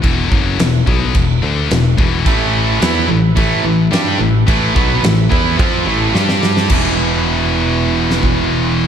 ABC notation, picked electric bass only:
X:1
M:4/4
L:1/8
Q:1/4=108
K:Em
V:1 name="Picked electric bass" clef=bass
E,,, F,,, E,,, B,,, E,,, D,, E,,, E,,, | A,,,2 E,, A,,, A,,, A,,, G,, A,,, | A,,, B,,, A,,, E,, =F,, A,,, G,,2 | E,,,8 |]